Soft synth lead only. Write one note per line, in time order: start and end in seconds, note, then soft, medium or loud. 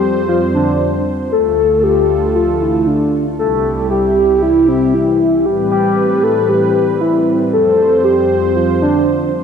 0.00 0.28 G4 loud
0.28 0.40 F4 loud
0.54 1.02 D4 medium
1.32 1.85 A4 loud
1.83 2.37 G4 loud
2.35 2.63 F4 loud
2.61 2.89 E4 loud
2.87 3.26 D4 loud
3.39 3.87 A4 loud
3.90 4.44 G4 loud
4.42 4.70 E4 loud
4.68 4.95 C4 medium
4.94 5.47 E4 loud
5.46 5.71 G4 loud
5.72 6.25 G4 loud
6.23 6.51 A4 loud
6.49 7.00 G4 loud
7.01 7.37 E4 loud
7.53 8.06 A4 loud
8.04 8.58 G4 loud
8.56 8.82 F4 loud
8.82 9.30 D4 medium